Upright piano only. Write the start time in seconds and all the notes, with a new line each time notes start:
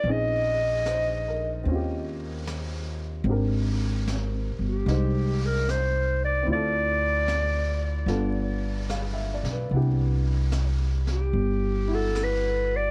0.04 C4 C#4
0.08 D#4 G#4
0.87 C5
1.28 A#4
1.64 C4
1.68 C#4 F4
1.75 G4
3.26 C4 D4 G4
3.31 A#4
4.88 G#3 D#4 C5
6.43 C4 E4
6.50 F4 A4
8.06 B3 D4 F4 A4
8.90 F5
9.13 E5
9.34 D5
9.52 B4
9.71 B3 D4 E4
9.76 G4
11.88 E4 F#4